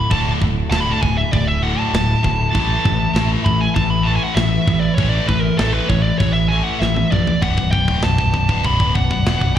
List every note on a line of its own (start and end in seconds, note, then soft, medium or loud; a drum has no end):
0.00 2.51 D3 medium
0.00 7.39 A3 medium
0.00 7.39 E4 medium
0.00 2.53 F#4 medium
0.00 0.10 B5 medium
0.10 0.32 D1 loud
0.10 0.39 D2 medium
0.10 0.40 A2 loud
0.10 0.40 D3 loud
0.10 0.29 A5 loud
0.10 kick loud
0.10 crash medium
0.41 0.62 D1 medium
0.41 0.69 D2 medium
0.41 0.69 A2 loud
0.41 kick medium
0.71 0.92 D1 medium
0.71 1.00 D2 medium
0.71 1.01 A2 loud
0.71 1.01 D3 loud
0.71 0.81 A5 medium
0.71 snare loud
0.71 crash medium
0.81 0.91 B5 loud
0.90 1.02 A5 loud
1.02 1.23 D1 medium
1.02 1.30 D2 medium
1.02 1.30 A2 medium
1.02 1.17 G#5 loud
1.02 kick medium
1.17 1.32 E5 loud
1.33 1.74 D1 loud
1.33 1.60 D2 medium
1.33 1.61 A2 loud
1.33 1.47 D5 medium
1.33 kick loud
1.33 crash medium
1.47 1.63 E5 loud
1.63 1.91 D2 loud
1.63 1.92 A2 loud
1.63 1.92 D3 loud
1.63 1.79 F#5 loud
1.79 3.31 A5 loud
1.93 2.14 D1 medium
1.93 2.21 D2 medium
1.93 2.21 A2 medium
1.93 snare loud
1.93 crash medium
2.23 2.45 D1 loud
2.23 2.51 D2 medium
2.23 2.51 A2 medium
2.23 kick medium
2.53 2.76 A1 medium
2.53 2.82 A2 medium
2.53 2.83 E3 loud
2.53 2.83 A3 loud
2.53 kick loud
2.53 crash medium
2.57 7.40 B4 medium
2.57 7.40 E5 medium
2.84 3.06 A1 loud
2.84 3.12 A2 medium
2.84 3.13 E3 medium
2.84 kick medium
3.14 3.36 A1 loud
3.14 3.44 A2 medium
3.14 3.44 E3 medium
3.14 3.44 A3 loud
3.14 snare loud
3.14 crash medium
3.45 3.67 A1 medium
3.45 3.73 A2 medium
3.45 3.74 E3 loud
3.45 3.60 B5 loud
3.45 kick medium
3.61 3.75 G#5 loud
3.75 4.18 A1 loud
3.75 4.03 A2 medium
3.75 4.04 E3 medium
3.75 3.91 A5 loud
3.75 kick loud
3.75 crash medium
3.90 4.06 B5 loud
4.03 4.35 A2 loud
4.03 4.35 E3 loud
4.03 4.35 A3 loud
4.03 4.15 A5 loud
4.16 4.24 G#5 loud
4.24 4.36 F#5 medium
4.35 4.58 A1 medium
4.35 4.64 A2 medium
4.35 4.65 E3 medium
4.35 4.79 E5 loud
4.35 snare loud
4.35 crash medium
4.67 4.88 A1 loud
4.67 4.95 A2 medium
4.67 4.95 E3 loud
4.67 kick medium
4.80 4.94 D5 medium
4.95 5.19 A1 medium
4.95 5.27 A2 loud
4.95 5.27 E3 loud
4.95 5.27 A3 loud
4.95 5.10 C#5 loud
4.95 kick loud
4.95 crash medium
5.10 5.27 D5 loud
5.27 5.50 A1 loud
5.27 5.56 A2 medium
5.27 5.56 E3 medium
5.27 5.41 B4 loud
5.27 kick medium
5.41 5.57 A#4 medium
5.58 5.80 A1 medium
5.58 5.88 A2 medium
5.58 5.88 E3 medium
5.58 5.89 A3 loud
5.58 5.73 A4 loud
5.58 snare loud
5.58 crash medium
5.73 5.89 B4 loud
5.89 6.11 A1 medium
5.89 6.17 A2 medium
5.89 6.17 E3 medium
5.89 6.02 C#5 loud
5.89 kick loud
6.02 6.18 D5 loud
6.19 6.62 A1 medium
6.19 6.48 A2 medium
6.19 6.48 E3 medium
6.19 6.33 C#5 medium
6.19 kick loud
6.19 crash medium
6.33 6.49 E5 medium
6.48 6.80 A2 loud
6.48 6.64 G#5 loud
6.52 6.80 E3 loud
6.52 6.81 A3 loud
6.64 6.80 F#5 loud
6.80 7.02 A1 medium
6.80 7.09 A2 medium
6.80 7.09 E3 medium
6.80 7.11 E5 loud
6.80 snare medium
6.96 high tom medium
7.11 7.33 A#1 medium
7.11 7.40 A2 medium
7.11 7.40 E3 medium
7.11 7.43 D5 medium
7.11 mid tom loud
7.27 floor tom loud
7.41 7.57 B0 medium
7.41 7.56 B1 loud
7.41 7.57 F#2 loud
7.41 9.59 F#3 medium
7.41 9.59 B3 medium
7.41 9.59 B4 medium
7.41 9.59 D5 medium
7.41 7.71 F#5 loud
7.41 kick medium
7.41 crash medium
7.58 7.72 B0 medium
7.58 7.73 B1 medium
7.58 7.73 F#2 medium
7.58 kick medium
7.71 7.87 B0 medium
7.71 7.88 B1 medium
7.71 7.89 F#2 medium
7.71 8.01 G5 medium
7.71 kick medium
7.88 8.02 D1 medium
7.88 8.03 D2 loud
7.88 8.03 A2 loud
7.88 kick medium
8.02 8.18 B0 medium
8.02 8.19 B1 medium
8.02 8.19 F#2 medium
8.02 8.66 A5 loud
8.02 snare loud
8.02 crash medium
8.18 8.33 B0 medium
8.18 8.33 B1 medium
8.18 8.34 F#2 medium
8.18 kick medium
8.34 8.48 B0 medium
8.34 8.48 B1 medium
8.34 8.49 F#2 medium
8.34 kick medium
8.49 8.64 C#1 medium
8.49 8.63 C#2 medium
8.49 8.64 G#2 loud
8.49 kick medium
8.64 8.79 B0 medium
8.64 8.79 B1 medium
8.64 8.79 F#2 medium
8.64 8.94 B5 loud
8.64 kick loud
8.64 crash medium
8.80 8.94 D1 medium
8.80 8.95 D2 medium
8.80 8.95 A2 loud
8.80 kick medium
8.95 9.10 B0 medium
8.95 9.10 B1 medium
8.95 9.11 F#2 medium
8.95 9.56 F#5 loud
8.95 kick medium
9.11 9.25 B0 medium
9.11 9.26 B1 medium
9.11 9.26 F#2 medium
9.11 kick medium
9.25 9.40 E1 medium
9.25 9.41 E2 medium
9.25 9.41 B2 loud
9.25 snare loud
9.25 crash medium
9.41 9.55 B0 medium
9.41 9.55 B1 medium
9.41 9.55 F#2 medium
9.41 kick medium
9.56 9.59 B1 loud